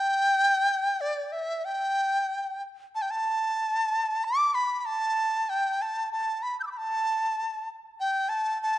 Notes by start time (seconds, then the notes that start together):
Already playing: G5
1.01 D5
1.32 E5
1.65 G5
2.95 A5
3.02 G5
3.10 A5
4.24 D6
4.55 B5
4.80 B5
4.85 A5
5.49 G5
5.82 A5
6.12 A5
6.43 B5
6.60 E6 G6
6.67 D6
6.72 B5
6.77 A5
8.00 G5
8.29 A5
8.62 A5